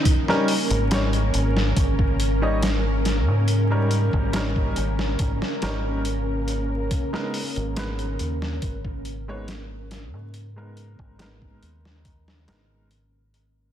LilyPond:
<<
  \new Staff \with { instrumentName = "String machine" } { \time 4/4 \key dis \phrygian \tempo 4 = 70 <cis' ais'>1~ | <cis' ais'>1~ | <cis' ais'>1~ | <cis' ais'>1 | }
  \new Staff \with { instrumentName = "Upright piano" } { \time 4/4 \key dis \phrygian r16 <g cis' dis' ais'>16 r8 <g cis' dis' cis''>16 r4. <g cis' dis' dis''>16 r4 | r16 <g cis' dis' ais'>8. <g cis' dis' ais'>4. <g cis' dis' ais'>8 r4 | r16 <gis b dis' ais'>16 r8 <gis b dis' b'>16 r4. <gis b dis' cis''>16 r4 | r16 <gis b dis' ais'>8. <gis b dis' ais'>4. <gis b dis' ais'>8 r4 | }
  \new Staff \with { instrumentName = "Fingered electric bass" } { \clef bass \time 4/4 \key dis \phrygian r8. gis,,8. gis,,8 gis,,4.~ gis,,16 gis,16~ | gis,8. gis,,8. gis,,8 gis,,16 r16 gis,,4. | r8. gis,,8. dis,8 gis,,4.~ gis,,16 gis,16~ | gis,8. gis,,8. dis,4 gis,,4. | }
  \new DrumStaff \with { instrumentName = "Drums" } \drummode { \time 4/4 <hh bd>16 sn16 hho16 hh16 <hh sn>16 hh16 hh16 sn16 <hh bd>16 bd16 hh8 <hh sn>8 <hh sn>8 | hh8 hh16 bd16 <hh sn>16 bd16 hh16 sn16 <hh bd>16 sn16 <hh sn>8 hh8 hh8 | <hh bd>16 sn16 hho16 hh16 <hh sn>16 hh16 hh16 sn16 <hh bd>16 bd16 hh8 <hh sn>8 <hh sn>8 | hh8 hh16 bd16 <hh sn>16 bd16 hh16 sn16 <hh bd>16 sn16 <hh sn>8 hh8 hh8 | }
>>